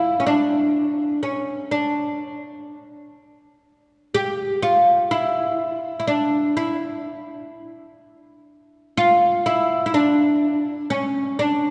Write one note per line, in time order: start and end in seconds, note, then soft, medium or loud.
0.00 0.19 E4 medium
0.20 0.26 C#4 medium
0.27 1.22 D4 medium
1.23 1.71 C#4 medium
1.71 2.17 D4 medium
4.15 4.62 G4 medium
4.63 5.07 F4 medium
5.11 5.98 E4 medium
6.00 6.07 E4 medium
6.07 6.56 D4 medium
6.57 7.01 E4 medium
8.97 9.46 F4 loud
9.46 9.85 E4 medium
9.86 9.93 E4 medium
9.94 10.90 D4 medium
10.90 11.39 C#4 medium
11.39 11.70 D4 medium